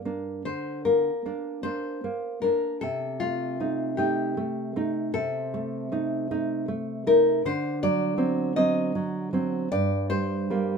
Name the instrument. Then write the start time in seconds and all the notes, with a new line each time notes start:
nylon-string guitar
Already playing: G2 D5
0.05 A#3 D4
0.45 D3 C5
0.85 A#3 A#4
1.26 A#3 D4
1.63 A#3 D4 C5
2.04 A#3
2.42 A#3 D4 A#4
2.81 C3 A4
3.20 A3 F4
3.60 A3 D#4
3.97 A3 D#4 G4
4.37 A3
4.76 A3 D#4
5.14 C3 A4
5.54 A3
5.92 A3 D#4
6.31 A3 D#4
6.68 A3
7.07 A3 D#4 A#4
7.45 D3 C5
7.83 F#3 D5
8.18 F#3 C4
8.56 F#3 C4 D#5
8.95 F#3
9.33 F#3 C4
9.72 G2 D5
10.10 G3 C5
10.50 G3 A#3